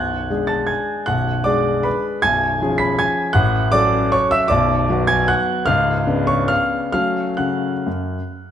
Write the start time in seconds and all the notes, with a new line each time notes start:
Already playing: B0 B1 F#5 F#6
0.30 G#3 D4 G#4
0.47 A5 A6
0.67 G#5 G#6
1.06 B0 B1 F#5 F#6
1.44 G#3 D4 G#4 D5 D6
1.83 B4 B5
2.22 B0 B1 G#5 G#6
2.62 F3 C#4 G#4
2.78 B5 B6
2.99 G#5 G#6
3.33 A1 A2 F#5 F#6
3.72 F#3 C#4 A4 D5 D6
4.12 C#5 C#6
4.31 E5 E6
4.48 B0 B1 D5 D6
4.90 F#3 B3 F#4
5.07 G#5 G#6
5.28 F#5 F#6
5.66 C#1 C#2 F5 F6
6.07 C#3 B3 D4
6.27 C#5 C#6
6.48 F5 F6
6.92 F#3 A3 C#4 F5 F6
7.37 C#3 F#5 F#6
7.86 F#2